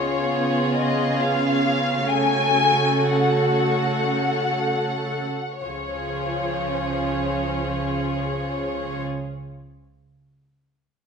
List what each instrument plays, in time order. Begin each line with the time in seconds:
Already playing: double bass section C#2, cello section C#3, viola section B3 C#4, violin section F4 G#4 C#5
0.75 violin section D#5
1.18 violin section F5
2.09 viola section A3, violin section F#4 A4 G#5
3.07 violin section F#5
5.61 double bass section C#2, cello section C#3, viola section F3 C#4, violin section F4 G#4 C#5